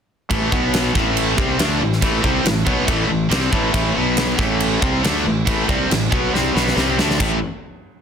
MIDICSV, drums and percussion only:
0, 0, Header, 1, 2, 480
1, 0, Start_track
1, 0, Key_signature, 0, "minor"
1, 0, Tempo, 431034
1, 341, Time_signature, 4, 2, 24, 8
1, 8928, End_track
2, 0, Start_track
2, 0, Title_t, "Drums"
2, 342, Note_on_c, 9, 36, 107
2, 342, Note_on_c, 9, 49, 65
2, 453, Note_off_c, 9, 36, 0
2, 454, Note_off_c, 9, 49, 0
2, 582, Note_on_c, 9, 36, 105
2, 693, Note_off_c, 9, 36, 0
2, 820, Note_on_c, 9, 49, 64
2, 832, Note_on_c, 9, 38, 101
2, 931, Note_off_c, 9, 49, 0
2, 943, Note_off_c, 9, 38, 0
2, 1062, Note_on_c, 9, 36, 105
2, 1076, Note_on_c, 9, 38, 33
2, 1173, Note_off_c, 9, 36, 0
2, 1188, Note_off_c, 9, 38, 0
2, 1301, Note_on_c, 9, 49, 65
2, 1412, Note_off_c, 9, 49, 0
2, 1538, Note_on_c, 9, 36, 108
2, 1649, Note_off_c, 9, 36, 0
2, 1773, Note_on_c, 9, 49, 65
2, 1785, Note_on_c, 9, 38, 111
2, 1885, Note_off_c, 9, 49, 0
2, 1897, Note_off_c, 9, 38, 0
2, 2146, Note_on_c, 9, 38, 34
2, 2253, Note_on_c, 9, 36, 105
2, 2253, Note_on_c, 9, 49, 65
2, 2257, Note_off_c, 9, 38, 0
2, 2364, Note_off_c, 9, 36, 0
2, 2364, Note_off_c, 9, 49, 0
2, 2494, Note_on_c, 9, 36, 102
2, 2606, Note_off_c, 9, 36, 0
2, 2735, Note_on_c, 9, 49, 60
2, 2747, Note_on_c, 9, 38, 106
2, 2846, Note_off_c, 9, 49, 0
2, 2858, Note_off_c, 9, 38, 0
2, 2969, Note_on_c, 9, 36, 105
2, 3080, Note_off_c, 9, 36, 0
2, 3208, Note_on_c, 9, 36, 111
2, 3210, Note_on_c, 9, 49, 60
2, 3320, Note_off_c, 9, 36, 0
2, 3321, Note_off_c, 9, 49, 0
2, 3690, Note_on_c, 9, 49, 62
2, 3702, Note_on_c, 9, 38, 121
2, 3801, Note_off_c, 9, 49, 0
2, 3813, Note_off_c, 9, 38, 0
2, 3926, Note_on_c, 9, 36, 113
2, 4038, Note_off_c, 9, 36, 0
2, 4165, Note_on_c, 9, 36, 105
2, 4166, Note_on_c, 9, 49, 60
2, 4276, Note_off_c, 9, 36, 0
2, 4278, Note_off_c, 9, 49, 0
2, 4642, Note_on_c, 9, 49, 58
2, 4654, Note_on_c, 9, 38, 110
2, 4753, Note_off_c, 9, 49, 0
2, 4766, Note_off_c, 9, 38, 0
2, 4886, Note_on_c, 9, 36, 101
2, 4905, Note_on_c, 9, 38, 33
2, 4997, Note_off_c, 9, 36, 0
2, 5017, Note_off_c, 9, 38, 0
2, 5126, Note_on_c, 9, 49, 70
2, 5238, Note_off_c, 9, 49, 0
2, 5371, Note_on_c, 9, 36, 114
2, 5482, Note_off_c, 9, 36, 0
2, 5617, Note_on_c, 9, 49, 68
2, 5629, Note_on_c, 9, 38, 112
2, 5728, Note_off_c, 9, 49, 0
2, 5740, Note_off_c, 9, 38, 0
2, 6093, Note_on_c, 9, 36, 113
2, 6093, Note_on_c, 9, 49, 66
2, 6204, Note_off_c, 9, 49, 0
2, 6205, Note_off_c, 9, 36, 0
2, 6337, Note_on_c, 9, 36, 110
2, 6448, Note_off_c, 9, 36, 0
2, 6584, Note_on_c, 9, 49, 62
2, 6596, Note_on_c, 9, 38, 102
2, 6695, Note_off_c, 9, 49, 0
2, 6707, Note_off_c, 9, 38, 0
2, 6817, Note_on_c, 9, 36, 109
2, 6929, Note_off_c, 9, 36, 0
2, 7074, Note_on_c, 9, 38, 62
2, 7186, Note_off_c, 9, 38, 0
2, 7313, Note_on_c, 9, 38, 82
2, 7425, Note_off_c, 9, 38, 0
2, 7438, Note_on_c, 9, 38, 73
2, 7545, Note_off_c, 9, 38, 0
2, 7545, Note_on_c, 9, 38, 91
2, 7656, Note_off_c, 9, 38, 0
2, 7785, Note_on_c, 9, 38, 105
2, 7897, Note_off_c, 9, 38, 0
2, 7913, Note_on_c, 9, 38, 87
2, 8019, Note_on_c, 9, 36, 108
2, 8021, Note_on_c, 9, 57, 88
2, 8024, Note_off_c, 9, 38, 0
2, 8131, Note_off_c, 9, 36, 0
2, 8132, Note_off_c, 9, 57, 0
2, 8928, End_track
0, 0, End_of_file